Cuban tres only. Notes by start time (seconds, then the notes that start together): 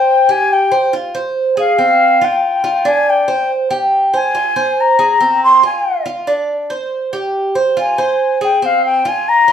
Already playing: C5
0.29 G4
0.72 C5
0.93 F4
1.15 C5
1.57 G#4
1.78 C4
2.21 F4
2.64 F4
2.85 D4
3.28 C5
3.71 G4
4.14 C5
4.35 F4
4.56 C5
4.99 G#4
5.21 C4
5.63 F4
6.06 F4
6.27 D4
6.70 C5
7.13 G4
7.55 C5
7.77 F4
7.98 C5
8.41 G#4
8.62 C4
9.05 F4
9.48 F4